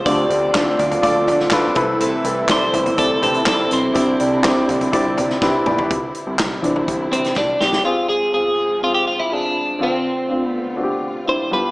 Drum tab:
HH |x-x-x-xxx-x-x-x-|x-x-x-xxx-xxx-x-|x-x-x-xxx-x-----|x-x-x-x-x-xx----|
CP |----x-------x---|----x-------x---|----x-----------|----x-----------|
SD |----o------oo---|----o-------o---|----o------oo---|----o------oo-oo|
T2 |----------------|----------------|--------------o-|----------------|
FT |------oo--o-----|------oo--o-----|------oo--o----o|-------o--------|
BD |o---o---o---o-o-|----o---o---o---|o---o---o---o---|o---o---o---o---|

HH |----------------|----------------|
CP |----------------|----------------|
SD |----------------|----------------|
T2 |----------------|----------------|
FT |----------------|----------------|
BD |----------------|----------------|